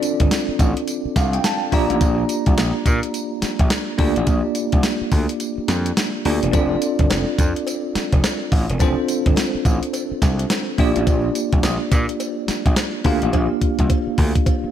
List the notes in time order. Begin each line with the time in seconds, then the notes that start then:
Already playing: C4 D4 F4 A4 D5
0.03 closed hi-hat, tambourine
0.20 G1, kick, closed hi-hat
0.31 snare, closed hi-hat, tambourine
0.49 muted slap bass stroke
0.59 A1, kick, closed hi-hat, tambourine
0.77 closed hi-hat
0.88 closed hi-hat, tambourine
1.05 muted slap bass stroke
1.16 C2 F5, kick, snare, closed hi-hat, tambourine
1.33 G5, closed hi-hat
1.44 A5, snare, closed hi-hat, tambourine
1.72 A#1 A#3 D4 F4 G4 D5 A#5, kick, open hi-hat
1.90 A1, closed hi-hat
2.01 A#1, kick, closed hi-hat, tambourine
2.29 closed hi-hat, tambourine
2.46 C2, kick, closed hi-hat
2.58 A#1, snare, closed hi-hat, tambourine
2.86 A#2, kick, closed hi-hat, tambourine
3.03 closed hi-hat
3.14 closed hi-hat, tambourine
3.42 muted slap bass stroke, snare, closed hi-hat, tambourine
3.59 A#1, kick, closed hi-hat
3.70 snare, closed hi-hat, tambourine
3.98 D2 A#3 D4 F4 G4 D5, kick, open hi-hat
4.16 A1, closed hi-hat
4.27 A#1, kick, closed hi-hat, tambourine
4.55 closed hi-hat, tambourine
4.72 C2, kick, closed hi-hat
4.83 snare, closed hi-hat, tambourine
5.01 muted slap bass stroke
5.12 D2, kick, open hi-hat, tambourine
5.29 closed hi-hat
5.40 closed hi-hat, tambourine
5.58 muted slap bass stroke
5.68 F2, snare, closed hi-hat, tambourine
5.86 closed hi-hat
5.97 snare, closed hi-hat, tambourine
6.25 D2 A#3 D4 F4 G4 D5, open hi-hat
6.43 E1, closed hi-hat
6.52 F1 C4 D4 F4 A4 D5, kick, closed hi-hat, tambourine, cowbell
6.82 closed hi-hat, tambourine
6.99 G1, kick, closed hi-hat
7.10 F1, snare, closed hi-hat, tambourine, cowbell
7.39 F2, kick, closed hi-hat, tambourine
7.56 closed hi-hat
7.67 closed hi-hat, tambourine, cowbell
7.95 muted slap bass stroke, snare, closed hi-hat, tambourine
8.12 F1, kick, closed hi-hat
8.24 snare, closed hi-hat, tambourine, cowbell
8.52 A1, kick, open hi-hat
8.70 E1, closed hi-hat
8.79 F1 C4 D4 F4 A4 C5, kick, closed hi-hat, tambourine, cowbell
9.08 closed hi-hat, tambourine
9.26 G1, kick, closed hi-hat
9.36 snare, closed hi-hat, tambourine, cowbell
9.55 muted slap bass stroke
9.65 A1, kick, closed hi-hat, tambourine
9.83 closed hi-hat
9.93 closed hi-hat, tambourine, cowbell
10.11 muted slap bass stroke
10.22 C2, kick, snare, closed hi-hat, tambourine
10.39 closed hi-hat
10.50 snare, closed hi-hat, tambourine, cowbell
10.78 A#1 A#3 D4 F4 G4 D5, kick, open hi-hat
10.96 A1, closed hi-hat
11.07 A#1, kick, closed hi-hat, tambourine, cowbell
11.35 closed hi-hat, tambourine
11.53 C2, kick, closed hi-hat
11.63 A#1, snare, closed hi-hat, tambourine, cowbell
11.92 A#2, kick, closed hi-hat, tambourine
12.09 closed hi-hat
12.20 closed hi-hat, tambourine, cowbell
12.48 muted slap bass stroke, snare, closed hi-hat, tambourine
12.66 A#1, kick, closed hi-hat
12.76 snare, closed hi-hat, tambourine, cowbell
13.04 D2 A#3 D4 F4 G4 F5, kick, open hi-hat
13.22 A1, closed hi-hat
13.33 A#1, kick, closed hi-hat, cowbell
13.61 kick, closed hi-hat
13.79 C2, kick, closed hi-hat
13.90 kick, closed hi-hat, cowbell
14.07 muted slap bass stroke
14.18 D2, kick, open hi-hat
14.35 kick, closed hi-hat
14.46 kick, closed hi-hat, cowbell
14.64 muted slap bass stroke